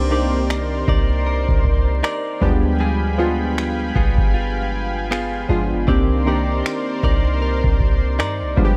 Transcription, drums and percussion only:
0.50 finger snap loud
0.88 kick loud
1.49 kick medium
1.65 kick medium
2.04 finger snap loud
2.42 kick loud
3.58 finger snap loud
3.96 kick medium
4.18 kick medium
5.12 finger snap loud
5.49 kick medium
5.88 kick loud
6.66 finger snap loud
7.03 kick loud
7.64 kick loud
7.80 kick medium
8.20 finger snap loud
8.57 kick loud

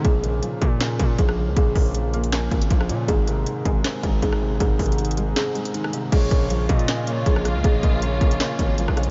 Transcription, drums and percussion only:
0.05 kick loud
0.05 closed hi-hat medium
0.24 closed hi-hat medium
0.43 closed hi-hat medium
0.62 kick loud
0.62 closed hi-hat medium
0.81 snare loud
0.81 clap medium
0.81 closed hi-hat medium
0.99 kick loud
0.99 closed hi-hat medium
1.18 kick medium
1.18 closed hi-hat medium
1.29 cross-stick loud
1.57 kick loud
1.57 closed hi-hat medium
1.75 kick loud
1.75 open hi-hat medium
1.95 closed hi-hat medium
2.14 closed hi-hat soft
2.24 closed hi-hat medium
2.32 snare loud
2.32 clap medium
2.32 closed hi-hat medium
2.51 kick loud
2.51 closed hi-hat soft
2.62 closed hi-hat medium
2.70 kick medium
2.70 closed hi-hat medium
2.81 cross-stick loud
2.89 closed hi-hat medium
3.08 kick loud
3.08 closed hi-hat medium
3.27 closed hi-hat medium
3.46 closed hi-hat medium
3.65 kick loud
3.65 closed hi-hat medium
3.84 snare loud
3.84 clap medium
3.84 closed hi-hat medium
4.03 kick loud
4.03 closed hi-hat medium
4.22 kick medium
4.22 closed hi-hat medium
4.32 cross-stick loud
4.60 kick loud
4.60 closed hi-hat medium
4.79 kick loud
4.79 closed hi-hat soft
4.79 open hi-hat medium
4.86 closed hi-hat soft
4.92 closed hi-hat medium
4.98 closed hi-hat medium
5.05 closed hi-hat medium
5.11 closed hi-hat medium
5.17 closed hi-hat medium
5.36 snare loud
5.36 clap medium
5.36 closed hi-hat medium
5.55 closed hi-hat soft
5.65 closed hi-hat medium
5.74 closed hi-hat medium
5.84 cross-stick loud
5.93 closed hi-hat medium
6.12 kick loud
6.12 closed hi-hat medium
6.12 crash loud
6.31 kick loud
6.31 closed hi-hat medium
6.50 closed hi-hat medium
6.69 kick loud
6.69 closed hi-hat medium
6.79 closed hi-hat soft
6.88 snare loud
6.88 clap medium
6.88 closed hi-hat medium
7.07 closed hi-hat medium
7.26 kick medium
7.26 closed hi-hat medium
7.36 cross-stick loud
7.45 cross-stick medium
7.45 closed hi-hat medium
7.64 kick loud
7.64 closed hi-hat medium
7.83 kick loud
7.83 closed hi-hat medium
8.02 closed hi-hat medium
8.21 kick loud
8.21 closed hi-hat soft
8.31 closed hi-hat medium
8.40 snare loud
8.40 clap medium
8.40 closed hi-hat medium
8.59 kick loud
8.59 closed hi-hat medium
8.78 closed hi-hat medium
8.88 cross-stick loud
8.97 cross-stick medium
8.97 closed hi-hat soft
9.03 closed hi-hat medium

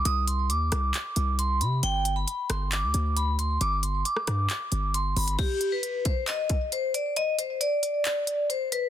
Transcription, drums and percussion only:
0.05 closed hi-hat medium
0.28 closed hi-hat medium
0.50 closed hi-hat medium
0.72 cross-stick loud
0.72 closed hi-hat medium
0.94 clap loud
0.94 closed hi-hat medium
1.16 closed hi-hat medium
1.39 closed hi-hat medium
1.61 closed hi-hat medium
1.83 closed hi-hat medium
2.05 closed hi-hat medium
2.28 closed hi-hat medium
2.50 cross-stick loud
2.50 closed hi-hat medium
2.72 clap loud
2.72 closed hi-hat medium
2.94 closed hi-hat medium
3.17 closed hi-hat medium
3.39 closed hi-hat medium
3.61 closed hi-hat medium
3.83 closed hi-hat medium
4.05 closed hi-hat medium
4.17 cross-stick medium
4.27 cross-stick loud
4.27 closed hi-hat medium
4.50 clap loud
4.50 closed hi-hat medium
4.72 closed hi-hat medium
4.94 closed hi-hat medium
5.17 closed hi-hat medium
5.17 open hi-hat medium
5.28 closed hi-hat medium
5.39 kick loud
5.39 closed hi-hat medium
5.39 crash medium
5.61 closed hi-hat medium
5.83 closed hi-hat medium
6.05 kick medium
6.05 closed hi-hat medium
6.27 clap loud
6.27 closed hi-hat medium
6.49 kick medium
6.49 closed hi-hat medium
6.72 closed hi-hat medium
6.94 closed hi-hat medium
7.16 closed hi-hat medium
7.39 closed hi-hat medium
7.61 closed hi-hat medium
7.83 closed hi-hat medium
8.05 clap loud
8.05 closed hi-hat medium
8.27 closed hi-hat medium
8.50 closed hi-hat medium
8.72 closed hi-hat medium

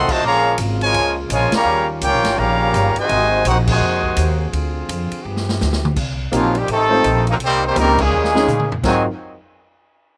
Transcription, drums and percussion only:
0.09 kick medium
0.09 crash medium
0.22 kick soft
0.58 kick soft
0.58 hi-hat pedal medium
0.58 ride medium
0.81 ride medium
0.94 kick soft
0.94 ride medium
1.30 kick soft
1.30 hi-hat pedal medium
1.30 ride medium
1.52 snare loud
1.52 ride medium
2.01 kick soft
2.01 hi-hat pedal medium
2.01 ride medium
2.24 snare medium
2.24 ride medium
2.38 kick soft
2.74 kick soft
2.74 hi-hat pedal medium
2.74 ride medium
2.96 ride medium
3.09 kick soft
3.09 ride medium
3.45 kick soft
3.45 hi-hat pedal medium
3.45 ride medium
3.67 kick loud
3.67 crash loud
4.03 kick medium
4.16 kick soft
4.16 hi-hat pedal medium
4.16 ride medium
4.53 kick soft
4.53 ride medium
4.89 kick soft
4.89 hi-hat pedal medium
4.89 ride medium
5.12 ride medium
5.37 snare medium
5.49 snare medium
5.61 snare medium
5.61 hi-hat pedal medium
5.73 snare medium
5.85 mid tom loud
5.96 kick medium
5.96 crash medium
6.32 kick soft
6.32 hi-hat pedal medium
6.32 ride medium
6.55 ride soft
6.68 kick soft
6.68 ride medium
7.04 kick soft
7.04 hi-hat pedal soft
7.04 ride medium
7.27 ride medium
7.40 kick soft
7.40 ride medium
7.76 kick soft
7.76 hi-hat pedal medium
7.76 ride medium
7.99 kick loud
7.99 crash medium
8.24 snare medium
8.36 snare medium
8.48 hi-hat pedal medium
8.48 mid tom medium
8.60 mid tom medium
8.72 floor tom medium
8.84 kick loud
8.84 snare medium
8.84 crash medium

